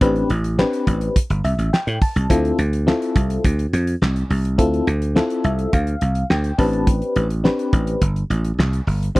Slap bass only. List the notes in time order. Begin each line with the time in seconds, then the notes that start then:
0.01 A1
0.30 A1
0.87 A1
1.30 G1
1.44 C2
1.58 A1
1.87 A2
2.16 C2
2.30 D2
2.59 D2
3.16 C2
3.45 D2
3.73 F2
4.02 C2
4.30 C2
4.59 D2
4.87 D2
5.44 C2
5.73 D2
6.02 C2
6.30 D2
6.59 A1
7.16 A1
7.73 A1
8.02 G1
8.30 A1
8.58 C2
8.87 G1
9.16 A1